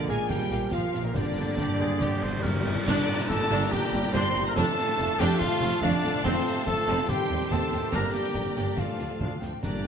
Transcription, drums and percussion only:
0.09 snare medium
0.29 concert bass drum medium
0.29 snare medium
0.40 snare medium
0.51 snare medium
0.71 concert bass drum medium
0.71 snare medium
0.94 snare medium
1.15 concert bass drum medium
1.15 snare medium
1.57 concert bass drum medium
1.57 snare medium
2.01 concert bass drum medium
2.01 snare medium
2.44 concert bass drum medium
2.44 snare medium
2.87 concert bass drum medium
2.87 snare medium
2.87 crash medium
2.87 tam-tam medium
3.08 snare medium
3.19 snare medium
3.30 concert bass drum medium
3.30 snare medium
3.62 snare medium
3.72 concert bass drum medium
3.72 snare medium
3.93 snare medium
4.03 snare medium
4.14 concert bass drum medium
4.14 snare medium
4.36 snare medium
4.57 concert bass drum medium
4.57 snare medium
4.79 snare medium
4.89 snare medium
4.99 concert bass drum medium
4.99 snare medium
5.20 snare medium
5.41 concert bass drum medium
5.41 snare medium
5.62 snare medium
5.84 concert bass drum medium
6.05 snare medium
6.25 concert bass drum medium
6.25 snare medium
6.46 snare medium
6.57 snare medium
6.67 concert bass drum medium
6.67 snare medium
6.98 snare medium
7.09 concert bass drum medium
7.09 snare medium
7.30 snare medium
7.40 snare medium
7.51 concert bass drum medium
7.51 snare medium
7.72 snare medium
7.92 concert bass drum medium
7.92 snare medium
8.13 snare medium
8.24 snare soft
8.34 concert bass drum medium
8.34 snare medium
8.56 snare soft
8.77 concert bass drum medium
8.77 snare medium
8.99 snare soft
9.20 concert bass drum medium
9.42 snare soft
9.63 concert bass drum medium
9.63 snare medium
9.63 crash soft

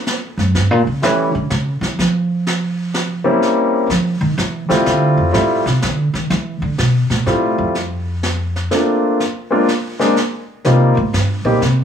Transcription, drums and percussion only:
0.07 snare medium
0.39 snare soft
0.55 brush sweep soft
0.55 snare soft
1.02 snare soft
1.50 snare medium
1.82 snare soft
1.99 brush sweep medium
1.99 snare soft
2.47 snare medium
2.94 snare medium
3.42 brush sweep soft
3.42 snare soft
3.90 snare soft
4.38 snare medium
4.70 snare soft
4.86 brush sweep medium
4.86 snare medium
5.34 snare medium
5.66 snare soft
5.82 snare medium
6.15 snare soft
6.30 brush sweep medium
6.30 snare soft
6.78 snare medium
7.10 snare soft
7.27 snare soft
7.75 brush sweep medium
7.75 snare soft
8.23 snare medium
8.56 snare soft
8.71 snare medium
9.20 brush sweep soft
9.20 snare soft
9.68 snare medium
10.00 snare soft
10.16 snare soft
10.65 brush sweep soft
10.65 snare soft
11.14 snare medium
11.62 snare medium

